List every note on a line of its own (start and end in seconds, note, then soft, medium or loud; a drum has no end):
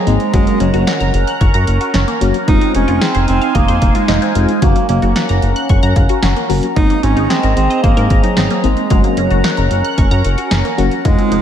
0.00 0.31 C4 medium
0.00 0.31 G#4 medium
0.00 0.31 D#5 medium
0.00 2.44 A#5 medium
0.07 0.18 G#1 loud
0.07 0.23 G#3 medium
0.07 0.33 G#3 medium
0.07 0.23 A#3 medium
0.07 0.23 C4 medium
0.07 0.23 D#4 medium
0.07 closed hi-hat medium
0.20 closed hi-hat medium
0.33 0.45 F#1 loud
0.33 0.98 F#3 medium
0.33 0.44 F#3 medium
0.33 0.59 G#3 loud
0.33 0.98 A#3 medium
0.33 0.98 C#4 medium
0.33 2.46 C#4 medium
0.33 0.98 F#4 medium
0.33 2.46 A#4 medium
0.33 2.46 F#5 medium
0.33 kick loud
0.33 closed hi-hat medium
0.47 0.58 A#3 medium
0.47 closed hi-hat medium
0.60 0.71 F#1 loud
0.60 1.10 F#3 medium
0.60 0.71 C#4 medium
0.60 closed hi-hat medium
0.74 0.85 F#1 loud
0.74 0.84 F#4 loud
0.74 closed hi-hat soft
0.87 0.98 F#5 medium
0.87 snare loud
0.87 closed hi-hat medium
1.00 1.12 F#1 loud
1.00 1.11 A#5 medium
1.00 closed hi-hat medium
1.14 1.25 F#1 loud
1.14 closed hi-hat medium
1.27 1.38 F#6 medium
1.27 closed hi-hat medium
1.41 1.52 F#1 loud
1.41 1.51 C#6 medium
1.41 kick medium
1.41 closed hi-hat medium
1.54 1.65 F#2 medium
1.54 1.65 A#5 loud
1.54 closed hi-hat medium
1.67 1.79 F#1 loud
1.67 closed hi-hat medium
1.81 1.92 F#4 medium
1.81 closed hi-hat medium
1.94 2.05 F#1 loud
1.94 2.05 C#4 loud
1.94 snare loud
1.94 closed hi-hat medium
2.08 2.18 A#3 medium
2.08 closed hi-hat medium
2.21 2.32 F#1 loud
2.21 2.37 F#3 medium
2.21 2.37 A#3 medium
2.21 2.37 C#4 medium
2.21 2.37 F#4 loud
2.21 closed hi-hat medium
2.34 closed hi-hat medium
2.48 2.59 F1 loud
2.48 2.59 G#3 medium
2.48 3.12 G#3 medium
2.48 3.12 C4 medium
2.48 3.12 D#4 medium
2.48 2.73 D#4 loud
2.48 4.60 D#4 medium
2.48 3.12 F4 medium
2.48 4.60 C5 medium
2.48 4.60 F5 medium
2.48 4.60 G#5 loud
2.48 kick loud
2.48 closed hi-hat medium
2.61 2.72 C4 medium
2.61 closed hi-hat medium
2.74 2.86 F1 loud
2.74 3.03 C#4 loud
2.74 2.85 D#4 medium
2.74 closed hi-hat medium
2.88 2.99 F1 loud
2.88 2.99 F4 loud
2.88 closed hi-hat soft
3.01 3.27 C4 loud
3.01 3.12 G#4 medium
3.01 snare loud
3.01 closed hi-hat medium
3.15 3.26 F1 loud
3.15 3.25 C5 medium
3.15 closed hi-hat medium
3.28 3.39 F1 loud
3.28 3.56 C4 loud
3.28 closed hi-hat medium
3.41 3.52 F5 medium
3.41 closed hi-hat medium
3.55 3.66 F1 loud
3.55 3.96 A#3 loud
3.55 3.66 D#5 medium
3.55 kick loud
3.55 closed hi-hat medium
3.68 3.79 F2 loud
3.68 3.79 C5 loud
3.68 closed hi-hat medium
3.82 3.93 F1 loud
3.82 kick loud
3.82 closed hi-hat medium
3.95 4.35 G#3 medium
3.95 4.06 F4 medium
3.95 closed hi-hat medium
4.08 4.20 F1 loud
4.08 4.19 D#4 loud
4.08 snare loud
4.08 closed hi-hat medium
4.22 4.33 C4 medium
4.22 closed hi-hat medium
4.35 4.46 F1 loud
4.35 4.51 G#3 medium
4.35 4.64 G#3 medium
4.35 4.51 C4 medium
4.35 4.51 D#4 medium
4.35 4.51 F4 medium
4.35 closed hi-hat medium
4.49 closed hi-hat medium
4.62 4.73 F#1 loud
4.62 5.26 F#3 medium
4.62 4.73 F#3 medium
4.62 5.26 A#3 medium
4.62 4.88 A#3 loud
4.62 5.26 C#4 medium
4.62 6.74 C#4 medium
4.62 5.26 F#4 medium
4.62 6.74 A#4 medium
4.62 6.74 F#5 medium
4.62 11.01 A#5 loud
4.62 kick loud
4.62 closed hi-hat medium
4.76 4.86 A#3 medium
4.76 closed hi-hat medium
4.89 5.00 F#1 loud
4.89 5.39 A#3 medium
4.89 5.00 C#4 medium
4.89 closed hi-hat medium
5.02 5.13 F#1 loud
5.02 5.13 F#4 medium
5.02 closed hi-hat soft
5.16 5.26 F#5 medium
5.16 snare loud
5.16 closed hi-hat medium
5.29 5.40 F#1 medium
5.29 5.40 A#5 medium
5.29 closed hi-hat medium
5.42 5.54 F#1 loud
5.42 closed hi-hat medium
5.56 5.67 F#6 medium
5.56 closed hi-hat medium
5.69 5.80 F#1 loud
5.69 5.80 C#6 medium
5.69 kick medium
5.69 closed hi-hat medium
5.83 5.94 F#2 medium
5.83 5.94 A#5 loud
5.83 closed hi-hat medium
5.96 6.07 F#1 loud
5.96 6.21 F5 medium
5.96 kick loud
5.96 closed hi-hat medium
6.09 6.20 F#4 medium
6.09 closed hi-hat medium
6.23 6.34 F#1 loud
6.23 6.34 C#4 medium
6.23 6.48 F#5 medium
6.23 snare loud
6.23 closed hi-hat medium
6.36 6.47 A#3 medium
6.36 closed hi-hat medium
6.49 6.61 F#1 loud
6.49 6.66 F#3 loud
6.49 6.66 A#3 medium
6.49 6.66 C#4 medium
6.49 6.66 F#4 loud
6.49 6.75 A#5 medium
6.49 open hi-hat medium
6.63 closed hi-hat medium
6.76 6.87 G#1 loud
6.76 7.40 G#3 medium
6.76 6.87 G#3 medium
6.76 7.40 A#3 medium
6.76 7.40 C4 medium
6.76 8.89 C4 medium
6.76 7.40 D#4 medium
6.76 7.05 D#4 loud
6.76 8.89 G#4 medium
6.76 8.88 D#5 medium
6.76 kick loud
6.76 closed hi-hat medium
6.90 7.01 A#3 medium
6.90 closed hi-hat soft
7.03 7.14 G#1 loud
7.03 7.14 C4 medium
7.03 7.31 C#4 loud
7.03 closed hi-hat medium
7.17 7.28 G#1 loud
7.17 7.27 D#4 loud
7.17 closed hi-hat soft
7.30 7.56 C4 loud
7.30 7.41 G#4 medium
7.30 snare loud
7.30 closed hi-hat medium
7.43 7.54 G#1 medium
7.43 7.54 A#4 medium
7.43 closed hi-hat medium
7.56 7.68 G#1 loud
7.56 7.81 C4 loud
7.56 closed hi-hat medium
7.70 7.81 D#5 medium
7.70 closed hi-hat medium
7.83 7.95 G#1 loud
7.83 8.25 A#3 loud
7.83 7.94 C5 medium
7.83 kick loud
7.83 closed hi-hat medium
7.97 8.08 G#2 medium
7.97 8.08 A#4 loud
7.97 closed hi-hat medium
8.10 8.21 G#1 loud
8.10 kick loud
8.10 closed hi-hat medium
8.23 8.65 F#3 loud
8.23 8.34 D#4 medium
8.23 closed hi-hat medium
8.37 8.48 G#1 loud
8.37 8.48 C4 medium
8.37 snare loud
8.37 closed hi-hat medium
8.50 8.61 A#3 medium
8.50 closed hi-hat medium
8.63 8.75 G#1 loud
8.63 8.90 G#3 medium
8.63 8.80 G#3 medium
8.63 8.80 A#3 medium
8.63 8.80 C4 medium
8.63 8.80 D#4 medium
8.63 closed hi-hat medium
8.77 closed hi-hat medium
8.90 9.02 F#1 loud
8.90 9.55 F#3 medium
8.90 9.01 F#3 medium
8.90 9.02 G#3 loud
8.90 9.55 A#3 medium
8.90 9.55 C#4 medium
8.90 11.03 C#4 medium
8.90 9.55 F#4 medium
8.90 11.03 A#4 medium
8.90 11.03 F#5 medium
8.90 kick loud
8.90 closed hi-hat medium
9.04 9.15 A#3 medium
9.04 closed hi-hat medium
9.17 9.28 F#1 loud
9.17 9.67 F#3 medium
9.17 9.28 C#4 medium
9.17 closed hi-hat medium
9.31 9.42 F#1 loud
9.31 9.42 F#4 loud
9.31 closed hi-hat soft
9.44 9.55 F#5 medium
9.44 snare loud
9.44 closed hi-hat medium
9.57 9.69 F#1 loud
9.57 9.68 A#5 medium
9.57 closed hi-hat medium
9.71 9.82 F#1 loud
9.71 closed hi-hat medium
9.85 9.95 F#6 loud
9.85 closed hi-hat medium
9.98 10.09 F#1 loud
9.98 10.09 C#6 medium
9.98 kick medium
9.98 closed hi-hat medium
10.11 10.22 F#2 loud
10.11 10.22 A#5 loud
10.11 closed hi-hat medium
10.25 10.36 F#1 loud
10.25 closed hi-hat medium
10.38 10.49 F#4 medium
10.38 closed hi-hat medium
10.51 10.63 F#1 loud
10.51 10.62 C#4 loud
10.51 snare loud
10.51 closed hi-hat medium
10.65 10.76 A#3 medium
10.65 closed hi-hat medium
10.78 10.89 F#1 loud
10.78 10.94 F#3 medium
10.78 10.94 A#3 medium
10.78 10.94 C#4 medium
10.78 10.94 F#4 loud
10.78 closed hi-hat medium
10.91 closed hi-hat medium
11.05 11.16 F1 loud
11.05 11.42 G#3 medium
11.05 11.42 G#3 loud
11.05 11.16 G#3 medium
11.05 11.42 C4 medium
11.05 11.42 D#4 medium
11.05 11.42 F4 medium
11.05 11.42 C5 medium
11.05 11.42 F5 medium
11.05 11.42 G#5 medium
11.05 kick loud
11.05 closed hi-hat medium
11.18 11.29 C4 medium
11.18 closed hi-hat medium
11.32 11.42 F1 loud
11.32 11.42 D#4 medium
11.32 closed hi-hat medium